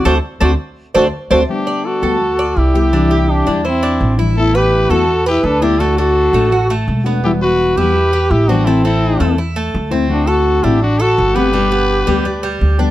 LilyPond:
<<
  \new Staff \with { instrumentName = "Trumpet" } { \time 4/4 \key g \major \tempo 4 = 167 r1 | g'4 a'2 g'4~ | g'4 g'4 e'4. r8 | a'8 b'4 a'4 g'8 a'8 g'8 |
a'8 a'2~ a'16 r4 r16 | g'8 b'4 b'4. g'8 fis'8 | e'8 a'4. r2 | fis'8 a'4 g'8 fis'8 a'4 b'8~ |
b'2. r4 | }
  \new Staff \with { instrumentName = "Cuban tres" } { \time 4/4 \key g \major <a' c'' d''>8 r8 <a' c'' d''>8 r4 <a' c'' d''>8 r8 <a' c'' d''>8 | r8 d''4 a'4 d''4 g'8 | d'8 g'4 d'8 c''8 d'4 e'8~ | e'8 b'4 a'4 b'4 d'8 |
a8 d'4 a8 fis'8 a4 b8~ | b8 r4 e'4 g'4 c'8 | a8 c'4 a8 e'8 a4 c'8~ | c'8 a'4 d'4 a'4 b8 |
g8 b4 g8 d'8 g4 d'8 | }
  \new Staff \with { instrumentName = "Duduk" } { \time 4/4 \key g \major fis'8 r8 fis'8 r4 fis'8 r8 fis'8 | d'4 fis'2 e'4~ | e'4 d'4 c'4. r8 | e'8 g'4 fis'4 e'8 d'8 e'8 |
fis'8 fis'2~ fis'16 r4 r16 | e'8 fis'4 g'4. e'8 d'8 | c'8 e'4. r2 | d'8 fis'4 e'8 d'8 fis'4 g'8~ |
g'2. r4 | }
  \new Staff \with { instrumentName = "Nylon-string guitar" } { \time 4/4 \key g \major <a c' d'>8 r8 <a c' d'>8 r4 <a c' d'>8 r8 <a c' d'>8 | <d g b g'>4. <g b g'>8 r4. <g b g'>8 | <c e g d' e'>4. <e g d' e'>8 r4. <e g d' e'>8 | <e a b e'>4. <a b e'>8 r4. <a b e'>8 |
<d a d' fis'>4. <a d' fis'>8 r4. <a d' fis'>8 | <b, e g b fis'>4. <e g b fis'>8 r4. <e g b fis'>8 | <e a c' e'>4. <a c' e'>8 r4. <a c' e'>8 | <d a c' fis'>4. <a c' fis'>8 r4. <a c' fis'>8 |
<b, d g b g'>4. <d g b g'>8 r4. <d g b g'>8 | }
  \new Staff \with { instrumentName = "Upright bass" } { \clef bass \time 4/4 \key g \major d,8 r8 d,8 r4 d,8 r8 d,8 | r4. d,4. c,4~ | c,4. e,4. a,,4~ | a,,4. e,4. d,4~ |
d,4. a,,4. e,,4~ | e,,4. e,4. a,,4~ | a,,4. e,4. d,4~ | d,4. a,,4. g,,4~ |
g,,4. d,4. d,4 | }
>>